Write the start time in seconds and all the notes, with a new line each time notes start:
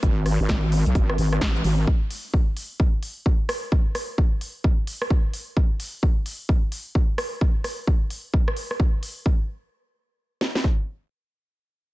0.03 G#1, kick, closed hi-hat
0.26 cross-stick, open hi-hat
0.40 G#1
0.49 kick, snare, closed hi-hat
0.72 open hi-hat
0.86 B1, closed hi-hat
0.95 G#1, kick, closed hi-hat
1.09 cross-stick
1.18 G#1, open hi-hat
1.33 cross-stick, closed hi-hat
1.41 A1, kick, snare, closed hi-hat
1.56 closed hi-hat
1.64 G#1, open hi-hat
1.87 kick
2.11 open hi-hat
2.34 kick
2.57 open hi-hat
2.80 kick
3.03 open hi-hat
3.26 kick
3.49 cross-stick, open hi-hat
3.72 kick
3.95 cross-stick, open hi-hat
4.18 kick
4.41 open hi-hat
4.64 kick
4.87 open hi-hat
5.02 cross-stick
5.10 kick
5.34 open hi-hat
5.57 kick
5.80 open hi-hat
6.03 kick
6.26 open hi-hat
6.49 kick
6.72 open hi-hat
6.95 kick
7.18 cross-stick, open hi-hat
7.41 kick
7.64 cross-stick, open hi-hat
7.87 kick
8.10 open hi-hat
8.34 kick
8.48 cross-stick
8.57 open hi-hat
8.71 cross-stick
8.80 kick
9.03 open hi-hat
9.26 kick
10.41 snare
10.55 snare
10.64 kick